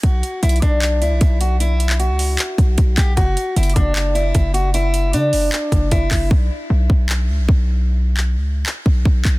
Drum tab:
HH |x-----x-----x-x-x-x-----x-----x-----x-----x-----|x-----x-----x-----o-----x-----x-----x-----x-----|x-----x-----x-x-x-x-----x-----x-----x-----x-----|x-----x-----x-----o-----------x-----x-----o-----|
CP |------------------------x-----------------------|---------x--------------x-----------------x-----|------------------------x-----------------------|------------------------x-----------------x-----|
BD |o-----------------o-----------------o-----------|------------------------------o-----o-----o-----|o-----------------o-----------------o-----------|------------------------------o-----o-----o-----|

HH |------------------------------------------------|------------------------------------------------|
CP |------------------------x-----------------------|---------x--------------x-----------------x-----|
BD |o-----------------o-----------------o-----------|------------------------------o-----o-----o-----|